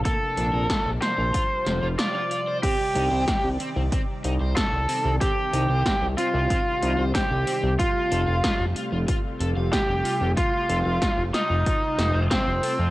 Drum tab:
CC |--------|x-------|--------|--------|
HH |xxxxxxxx|xxxxxxxo|xxxxxxxo|xxxxxxxo|
SD |--oo-oo-|--o---o-|--o---o-|--o---o-|
BD |o-o-o---|o-o-o-o-|o-o-o-o-|o-o-o-o-|

CC |--------|
HH |xxxxxxxo|
SD |--oo-oo-|
BD |o-o-o-o-|